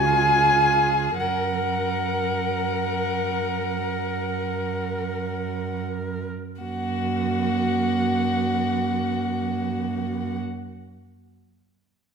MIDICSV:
0, 0, Header, 1, 5, 480
1, 0, Start_track
1, 0, Key_signature, 6, "major"
1, 0, Tempo, 500000
1, 11654, End_track
2, 0, Start_track
2, 0, Title_t, "Violin"
2, 0, Program_c, 0, 40
2, 0, Note_on_c, 0, 80, 90
2, 1142, Note_off_c, 0, 80, 0
2, 1153, Note_on_c, 0, 78, 56
2, 5593, Note_off_c, 0, 78, 0
2, 6355, Note_on_c, 0, 78, 60
2, 9965, Note_off_c, 0, 78, 0
2, 11654, End_track
3, 0, Start_track
3, 0, Title_t, "Violin"
3, 0, Program_c, 1, 40
3, 38, Note_on_c, 1, 68, 56
3, 1155, Note_on_c, 1, 70, 47
3, 1169, Note_off_c, 1, 68, 0
3, 5632, Note_off_c, 1, 70, 0
3, 6354, Note_on_c, 1, 66, 49
3, 9964, Note_off_c, 1, 66, 0
3, 11654, End_track
4, 0, Start_track
4, 0, Title_t, "Viola"
4, 0, Program_c, 2, 41
4, 52, Note_on_c, 2, 65, 51
4, 1152, Note_off_c, 2, 65, 0
4, 1158, Note_on_c, 2, 70, 36
4, 6015, Note_off_c, 2, 70, 0
4, 6344, Note_on_c, 2, 58, 44
4, 9953, Note_off_c, 2, 58, 0
4, 11654, End_track
5, 0, Start_track
5, 0, Title_t, "Cello"
5, 0, Program_c, 3, 42
5, 0, Note_on_c, 3, 37, 65
5, 1154, Note_off_c, 3, 37, 0
5, 1159, Note_on_c, 3, 42, 41
5, 6016, Note_off_c, 3, 42, 0
5, 6348, Note_on_c, 3, 42, 50
5, 9958, Note_off_c, 3, 42, 0
5, 11654, End_track
0, 0, End_of_file